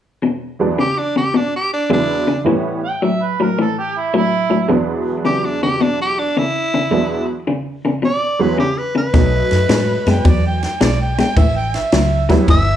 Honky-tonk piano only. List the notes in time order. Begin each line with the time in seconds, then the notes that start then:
0.59 E2 F#3 G#3 B3 D4
1.89 E2 F#3 G#3 B3 E4
2.44 A2 E3 G3 B3 C#4
4.68 E2 F#3 G#3 B3 D4
6.90 E2 F#3 G#3 B3 D4
8.39 E2 F#3 G#3 B3 C#4
9.13 F#3 A3 C#4 D#4
12.29 G3 B3 C#4 E4